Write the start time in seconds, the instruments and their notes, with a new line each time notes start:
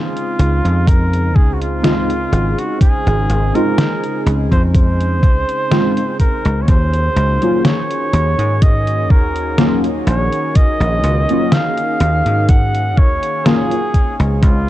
Already playing: analog synth pad C#3 G#3 C4 D#4 G#4, flugelhorn F4
0.17 closed hi-hat
0.39 slap bass C#2, closed hi-hat
0.65 slap bass F2, closed hi-hat
0.87 flugelhorn A#4, kick, closed hi-hat
1.13 closed hi-hat
1.35 slap bass C#2, flugelhorn G#4, kick
1.54 flugelhorn F#4
1.61 flugelhorn F4, closed hi-hat
1.83 synth keys G#3 C4 D#4 F4, snare, closed hi-hat
2.10 closed hi-hat
2.32 slap bass G#1, closed hi-hat
2.58 flugelhorn F#4, closed hi-hat
2.81 flugelhorn G#4, muted slap bass stroke, kick, closed hi-hat
3.06 slap bass G#1, closed hi-hat
3.29 slap bass G#1, closed hi-hat
3.54 synth keys G#3 C4 D#4 F4, flugelhorn A#4, closed hi-hat
3.78 snare, closed hi-hat
4.04 closed hi-hat
4.26 slap bass C#2, closed hi-hat
4.51 slap bass F2, flugelhorn C5, kick, closed hi-hat
4.75 flugelhorn C5, kick, closed hi-hat
5.00 closed hi-hat
5.22 slap bass C#2, kick, closed hi-hat
5.49 closed hi-hat
5.71 synth keys G#3 C4 D#4 F4, snare, closed hi-hat
5.97 closed hi-hat
6.20 flugelhorn A#4, kick, closed hi-hat
6.45 slap bass C#2, closed hi-hat
6.62 flugelhorn C#5
6.68 slap bass D#2, analog synth pad D#3 A#3 C#4 F#4, flugelhorn C5, kick, closed hi-hat
6.94 closed hi-hat
7.16 slap bass C#2, closed hi-hat
7.42 synth keys F#3 A#3 C#4 F4, closed hi-hat
7.65 flugelhorn C#5, snare, closed hi-hat
7.91 closed hi-hat
8.13 slap bass D#2, closed hi-hat
8.38 slap bass G#2, closed hi-hat
8.62 flugelhorn D#5, kick, closed hi-hat
8.87 closed hi-hat
9.10 slap bass D#2, flugelhorn A#4, kick
9.36 closed hi-hat
9.58 synth keys F#3 A#3 C#4 F4, snare, closed hi-hat
9.84 closed hi-hat
10.07 slap bass A#1, flugelhorn C#5, closed hi-hat
10.32 closed hi-hat
10.55 flugelhorn D#5, muted slap bass stroke, kick, closed hi-hat
10.80 slap bass A#1, closed hi-hat
11.04 slap bass C#2, closed hi-hat
11.29 synth keys F#3 A#3 C#4 F4, closed hi-hat
11.52 flugelhorn F5, snare, closed hi-hat
11.78 closed hi-hat
12.00 slap bass D#2, closed hi-hat
12.26 slap bass G#2, closed hi-hat
12.49 flugelhorn F#5, kick, closed hi-hat
12.75 closed hi-hat
12.97 slap bass D#2, flugelhorn C#5, kick
13.23 closed hi-hat
13.45 synth keys F#3 A#3 C#4 F4, flugelhorn G#4, snare, closed hi-hat
13.71 closed hi-hat
13.94 analog synth pad C#3 G#3 C4 D#4, kick, closed hi-hat
14.20 slap bass C#2, closed hi-hat
14.42 slap bass C#2, flugelhorn F4, kick, closed hi-hat